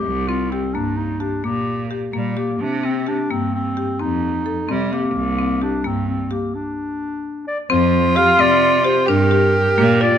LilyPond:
<<
  \new Staff \with { instrumentName = "Viola" } { \time 11/8 \key c \minor \tempo 4 = 130 r1 r4. | r1 r4. | r1 r4. | f'2. g'2~ g'8 | }
  \new Staff \with { instrumentName = "Marimba" } { \time 11/8 \key c \minor r8 c'8 g'8 bes4 g'8 bes4 g'8 bes8 g'8 | r8 c'8 g'8 bes4 g'8 c'4 a'8 c'8 g'8 | r8 c'8 g'8 bes4 g'8 r2 r8 | c'4 g'8 c'4 g'8 d'8 g'4 bes8 f'8 | }
  \new Staff \with { instrumentName = "Clarinet" } { \time 11/8 \key c \minor g'8 f'8 c'8 d'8 ees'8 d'8 g'4 r8 g8 bes8 | d'8 c'8 d'8 c'8 c'4 ees'4. g8 bes8~ | bes4 d'8 c'8 c'8 bes8 d'2 d''8 | c''4 f''8 d''4 c''8 bes'2 d''8 | }
  \new Staff \with { instrumentName = "Cello" } { \clef bass \time 11/8 \key c \minor c,4. g,4. bes,4. bes,4 | c4. g,4. f,4. c4 | c,4. g,4~ g,16 r2 r8. | f,4. c4. g,4. bes,4 | }
>>